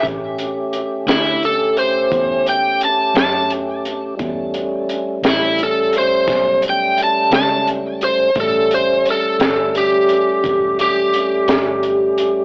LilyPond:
<<
  \new Staff \with { instrumentName = "Overdriven electric guitar" } { \time 12/8 \key a \mixolydian \tempo 4. = 58 r4. e'8 a'8 c''4 g''8 a''8 a''8 r4 | r4. e'8 a'8 c''4 g''8 a''8 a''8 r8 c''8 | a'8 c''8 a'4 g'4. g'2~ g'8 | }
  \new Staff \with { instrumentName = "Tonewheel organ" } { \time 12/8 \key a \mixolydian <a cis' g'>1. | <g a cis'>1. | <g a cis'>1. | }
  \new Staff \with { instrumentName = "Fingered electric bass" } { \clef bass \time 12/8 \key a \mixolydian a,,4. d,4. e,4. fis,4. | e,4. a,,4. b,,4. cis,4. | a,,4. g,,4. e,,4. g,,4. | }
  \new DrumStaff \with { instrumentName = "Drums" } \drummode { \time 12/8 <hh bd>8 hh8 hh8 <hh sn>8 hh8 hh8 <hh bd>8 hh8 hh8 <hh sn>8 hh8 hh8 | <hh bd>8 hh8 hh8 <hh sn>8 hh8 hh8 <hh bd sn>8 hh8 hh8 <hh sn>8 hh8 hh8 | <hh bd>8 hh8 hh8 <hh sn>8 hh8 hh8 <hh bd>8 hh8 hh8 <hh sn>8 hh8 hh8 | }
>>